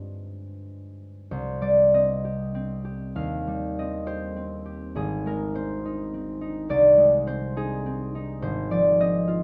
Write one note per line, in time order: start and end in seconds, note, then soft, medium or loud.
0.00 1.31 G2 soft
0.00 1.60 G3 soft
0.00 1.32 D4 soft
0.00 2.23 G4 soft
0.00 1.33 B4 medium
0.00 1.33 D5 medium
1.31 3.20 C2 soft
1.31 4.05 C5 medium
1.61 3.46 G3 soft
1.61 2.16 D5 medium
1.94 2.54 C4 soft
1.94 3.78 D#5 medium
2.25 2.83 G4 soft
2.55 3.78 C4 soft
2.85 4.06 G4 soft
3.15 4.97 D#2 soft
3.15 4.19 F5 medium
3.47 4.98 G3 soft
3.79 4.35 C4 soft
3.79 7.69 D#5 medium
4.06 4.64 G4 soft
4.06 5.54 C5 medium
4.36 5.54 C4 soft
4.65 4.98 G4 soft
4.95 6.71 G#1 medium
4.95 7.55 G#4 medium
5.26 6.96 G#3 soft
5.26 5.76 A#4 medium
5.55 6.13 C4 soft
5.55 7.26 C5 medium
5.85 6.40 D#4 soft
6.14 7.26 C4 soft
6.41 7.56 D#4 soft
6.69 8.44 C2 medium
6.69 7.67 D5 medium
6.98 9.43 G#3 soft
7.27 7.85 C4 soft
7.27 8.41 C5 medium
7.56 8.14 D#4 soft
7.56 9.43 G#4 medium
7.86 8.99 C4 soft
8.15 9.43 D#4 soft
8.42 9.43 G#1 medium
8.42 9.43 C5 medium
8.70 9.43 F3 medium
8.70 9.19 D5 medium
9.00 9.43 C4 soft
9.00 9.43 D#5 medium
9.28 9.43 F4 soft